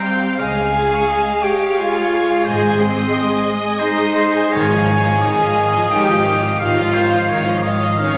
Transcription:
0.00 0.36 G3 medium
0.00 0.36 C4 loud
0.00 0.42 C5 medium
0.00 0.36 F5 medium
0.00 0.37 G5 loud
0.00 0.22 G5 medium
0.21 0.40 F5 medium
0.38 0.97 C#2 loud
0.38 0.97 C#2 medium
0.38 4.50 G#3 medium
0.38 1.44 G#4 loud
0.38 0.56 D#5 medium
0.38 1.09 F5 medium
0.38 2.42 F5 medium
0.38 1.45 G#5 loud
0.56 0.74 F5 medium
0.75 0.92 G#5 medium
0.92 1.09 C#6 medium
1.08 1.43 D#5 medium
1.08 1.26 G#5 medium
1.27 1.44 F5 medium
1.42 1.78 G4 loud
1.42 2.46 C#5 medium
1.42 1.61 D#5 medium
1.42 1.80 G5 loud
1.60 1.78 F5 medium
1.78 2.46 F4 loud
1.78 2.45 F5 loud
1.78 1.95 G#5 medium
1.95 2.12 C#6 medium
2.13 2.30 G#5 medium
2.30 2.46 F5 medium
2.44 3.01 G#1 loud
2.44 3.01 G#2 loud
2.44 2.78 G#4 loud
2.44 2.88 C5 medium
2.44 4.48 D#5 loud
2.44 2.61 D#5 medium
2.44 2.81 G#5 loud
2.64 2.80 G#5 medium
2.79 3.48 C4 loud
2.79 3.46 C5 medium
2.79 2.97 C6 medium
2.98 3.13 D#6 medium
3.11 3.80 D#5 medium
3.11 3.30 C6 medium
3.31 3.47 G#5 medium
3.47 3.64 D#5 medium
3.65 3.81 G#5 medium
3.78 4.50 D#4 loud
3.78 4.53 C5 loud
3.78 4.54 D#5 loud
3.78 3.98 C6 medium
3.98 4.17 D#6 medium
4.15 4.34 C6 medium
4.33 4.52 G#5 medium
4.52 5.15 G#1 loud
4.52 5.15 G#2 loud
4.52 4.70 D#3 loud
4.52 5.93 G#4 loud
4.52 5.23 C#5 loud
4.52 4.70 C#5 medium
4.52 4.69 F5 medium
4.52 5.92 G#5 loud
4.70 4.88 F3 medium
4.70 4.88 D#5 medium
4.70 4.88 F5 medium
4.87 5.06 D#3 medium
4.87 5.05 C#5 medium
4.87 5.05 F5 medium
5.04 5.22 F3 medium
5.04 5.22 D#5 medium
5.04 5.22 F5 medium
5.20 5.83 G#1 medium
5.20 5.84 G#2 loud
5.20 5.38 D#3 medium
5.20 5.37 C#5 medium
5.20 6.59 D#5 loud
5.20 5.38 F5 medium
5.39 5.56 F3 medium
5.39 5.58 D#5 medium
5.39 5.57 F5 medium
5.57 5.74 D#3 medium
5.57 5.75 C#5 medium
5.57 5.74 F5 medium
5.73 5.92 F3 medium
5.73 5.91 D#5 medium
5.73 5.91 F5 medium
5.90 6.52 G#1 loud
5.90 6.53 G#2 medium
5.90 6.07 D#3 medium
5.90 6.61 G4 loud
5.90 6.08 C#5 medium
5.90 6.07 F5 medium
5.90 6.61 G5 loud
6.09 6.26 F3 medium
6.09 6.26 D#5 medium
6.09 6.27 F5 medium
6.26 6.43 D#3 medium
6.26 6.44 C#5 medium
6.26 6.43 F5 medium
6.43 6.61 F3 medium
6.43 6.61 D#5 medium
6.43 6.62 F5 medium
6.59 7.22 G#1 loud
6.59 7.23 G#2 loud
6.59 6.77 D#3 loud
6.59 7.64 F4 loud
6.59 6.78 C#5 medium
6.59 7.65 F5 loud
6.59 6.95 F5 loud
6.59 6.77 F5 medium
6.78 6.96 F3 medium
6.78 6.96 D#5 medium
6.78 6.96 F5 medium
6.94 7.14 D#3 medium
6.94 7.30 C5 loud
6.94 7.14 C#5 medium
6.94 7.13 F5 medium
7.11 7.31 F3 medium
7.11 7.29 D#5 medium
7.11 7.31 F5 medium
7.29 7.92 G#1 loud
7.29 7.92 G#2 loud
7.29 7.47 D#3 medium
7.29 7.65 C#5 medium
7.29 7.48 C#5 medium
7.29 7.47 F5 medium
7.47 7.65 F3 medium
7.47 7.65 D#5 medium
7.51 7.67 F5 medium
7.63 7.83 D#3 medium
7.63 7.83 C#5 medium
7.63 7.99 D#5 medium
7.63 7.83 F5 medium
7.82 8.00 F3 medium
7.82 8.00 D#5 medium
7.82 8.01 F5 medium
7.98 8.18 G#1 loud
7.98 8.18 G#2 medium
7.98 8.17 D#3 medium
7.98 8.18 C#4 loud
7.98 8.18 C#5 loud
7.98 8.18 F5 loud
7.98 8.18 F5 medium
8.03 8.18 C#5 medium

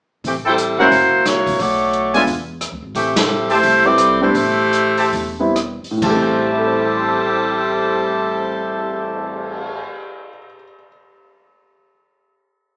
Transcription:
0.24 0.75 A1 medium
0.24 0.35 E3 medium
0.24 0.35 A3 medium
0.24 0.36 C4 medium
0.24 0.36 G4 medium
0.24 kick soft
0.24 open hi-hat soft
0.45 0.54 E4 medium
0.45 0.78 E4 medium
0.45 0.54 A4 medium
0.45 0.79 A4 medium
0.45 0.54 C5 medium
0.45 0.54 G5 medium
0.49 0.79 G3 medium
0.49 0.79 C4 medium
0.58 closed hi-hat soft
0.78 0.91 G1 medium
0.78 0.91 G#3 soft
0.78 0.91 A#3 soft
0.78 1.23 A#3 medium
0.78 0.91 C#4 soft
0.78 0.88 E4 medium
0.78 0.91 E4 medium
0.78 1.23 E4 medium
0.78 1.23 F#4 medium
0.78 0.88 A#4 medium
0.78 1.23 C5 medium
0.78 0.88 C#5 medium
0.78 0.88 F#5 loud
0.91 1.42 F#1 medium
0.91 kick soft
0.91 open hi-hat soft
1.26 1.60 A#3 medium
1.26 1.60 E4 medium
1.26 1.59 F#4 medium
1.26 1.59 C#5 medium
1.26 cross-stick medium
1.26 snare soft
1.26 closed hi-hat medium
1.47 1.58 C2 medium
1.47 kick soft
1.47 open hi-hat soft
1.59 2.24 B1 medium
1.59 2.27 A3 medium
1.59 2.27 F#4 medium
1.59 2.27 C#5 medium
1.59 2.27 D5 medium
1.59 kick soft
1.59 open hi-hat soft
1.93 closed hi-hat soft
2.14 2.26 G#3 medium
2.14 2.26 B3 medium
2.14 2.26 D4 medium
2.14 2.23 F4 loud
2.14 2.27 F4 medium
2.14 2.23 D5 medium
2.14 2.23 E5 medium
2.14 2.23 G#5 loud
2.14 open hi-hat soft
2.27 2.69 E2 medium
2.27 kick soft
2.27 open hi-hat soft
2.61 cross-stick medium
2.61 closed hi-hat medium
2.72 2.82 D2 medium
2.82 2.93 G#1 medium
2.95 3.59 A1 medium
2.95 3.15 E3 medium
2.95 3.15 A3 medium
2.95 3.15 C4 medium
2.95 3.15 G4 medium
2.95 kick soft
2.95 open hi-hat soft
3.16 3.48 G3 medium
3.16 3.48 C4 medium
3.16 3.48 E4 medium
3.16 3.48 A4 medium
3.16 snare medium
3.16 ride medium
3.50 3.86 A3 medium
3.50 3.86 E4 medium
3.50 3.59 G4 medium
3.50 3.85 G4 medium
3.50 3.59 C5 medium
3.50 3.86 C5 loud
3.50 3.58 E5 medium
3.50 3.58 A5 medium
3.50 open hi-hat soft
3.63 4.31 C2 medium
3.63 kick soft
3.63 open hi-hat soft
3.84 4.18 G3 medium
3.84 4.19 C4 soft
3.84 4.22 C4 medium
3.84 4.19 E4 medium
3.84 4.21 G4 medium
3.84 4.22 A4 medium
3.84 4.19 B4 soft
3.84 4.21 D5 loud
3.98 cross-stick medium
3.98 closed hi-hat medium
4.21 4.33 G3 medium
4.21 5.36 A3 medium
4.21 4.34 B3 medium
4.21 4.34 C4 medium
4.21 4.34 D4 medium
4.21 5.36 E4 medium
4.21 5.36 G4 medium
4.21 5.36 C5 medium
4.34 5.09 A1 medium
4.34 kick soft
4.34 open hi-hat soft
4.73 closed hi-hat soft
4.97 5.08 G4 medium
4.97 5.08 C5 medium
4.97 5.08 E5 medium
4.97 5.08 A5 medium
4.97 open hi-hat soft
5.13 5.80 E1 medium
5.13 kick soft
5.13 open hi-hat soft
5.39 5.54 G3 medium
5.39 5.54 B3 medium
5.39 5.55 C4 medium
5.39 5.55 E4 medium
5.56 cross-stick medium
5.56 closed hi-hat soft
5.83 muted upright bass stroke soft
5.83 open hi-hat soft
5.91 9.72 A2 medium
5.97 9.79 E3 soft
6.02 9.79 A1 medium
6.02 9.85 G3 soft
6.02 9.81 G3 medium
6.02 9.81 C4 medium
6.02 9.80 E4 medium
6.02 9.83 G4 medium
6.02 9.80 A4 medium
6.02 9.83 C5 medium
6.02 9.83 E5 medium
6.02 9.83 A5 loud
6.02 kick medium
6.02 crash medium
6.09 9.91 A3 soft
6.16 9.97 C4 medium
6.31 cymbal swell soft
6.52 10.29 E4 soft
6.59 10.36 A4 soft
6.67 10.44 C5 soft
6.76 10.54 E5 soft
6.86 10.63 A5 soft
6.97 10.74 C6 soft
7.09 10.86 E6 soft

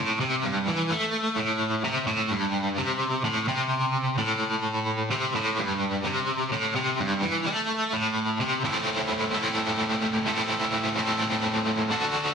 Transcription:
0.00 0.20 A2 loud
0.21 0.44 C3 medium
0.44 0.67 G2 loud
0.68 0.91 E3 medium
0.91 1.37 A3 loud
1.37 1.84 A2 medium
1.85 2.07 C3 medium
2.07 2.30 A2 loud
2.31 2.77 G2 loud
2.78 3.24 C3 medium
3.25 3.48 A2 medium
3.48 4.18 C3 medium
4.18 5.11 A2 loud
5.11 5.35 C3 medium
5.36 5.58 A2 loud
5.59 6.05 G2 loud
6.04 6.51 C3 loud
6.52 6.75 A2 medium
6.76 6.99 C3 medium
7.00 7.23 G2 loud
7.22 7.45 E3 loud
7.46 7.92 A3 loud
7.93 8.40 A2 medium
8.41 8.63 C3 medium
8.64 9.37 A2 medium
8.64 9.36 A3 medium
8.64 9.36 C4 medium
8.64 9.35 E4 medium
8.64 9.34 A4 medium
9.34 10.25 A2 medium
9.34 10.27 A3 medium
9.34 10.27 C4 medium
9.34 10.27 E4 medium
9.34 10.29 A4 medium
10.26 10.95 A2 medium
10.26 10.97 A3 medium
10.26 10.97 C4 medium
10.26 10.97 E4 medium
10.26 10.99 A4 medium
10.96 11.90 A2 medium
10.96 11.90 A3 medium
10.96 11.91 C4 medium
10.96 11.91 E4 medium
10.96 11.91 A4 medium
11.91 12.34 D3 medium
11.91 12.34 D4 medium
11.91 12.34 F#4 loud
11.91 12.34 A4 medium

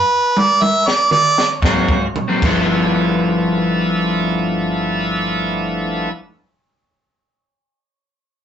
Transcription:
0.00 0.41 B4 medium
0.37 0.64 D5 medium
0.37 mid tom medium
0.62 0.89 E5 medium
0.62 mid tom medium
0.87 1.11 D5 medium
0.87 snare medium
1.11 1.52 D5 loud
1.11 mid tom medium
1.38 snare medium
1.62 2.09 G#2 medium
1.62 1.95 G#2 medium
1.62 2.07 F#3 medium
1.62 1.95 F#3 medium
1.62 2.07 G#3 medium
1.62 2.07 A#3 medium
1.62 1.95 A#3 medium
1.62 2.08 C4 medium
1.62 1.95 C4 loud
1.62 2.07 F#4 medium
1.62 kick medium
1.62 snare medium
1.88 kick loud
2.13 muted upright bass stroke soft
2.13 floor tom medium
2.28 2.42 G#2 medium
2.28 2.43 F#3 medium
2.28 2.43 A#3 medium
2.28 2.43 C4 medium
2.41 6.05 G1 medium
2.41 6.09 G2 medium
2.41 6.08 F3 medium
2.41 6.12 F3 loud
2.41 6.09 A3 medium
2.41 6.10 B3 medium
2.41 6.11 D4 medium
2.41 6.12 E4 medium
2.41 kick loud
2.41 crash medium
2.45 6.13 B3 medium
2.45 6.13 E4 loud

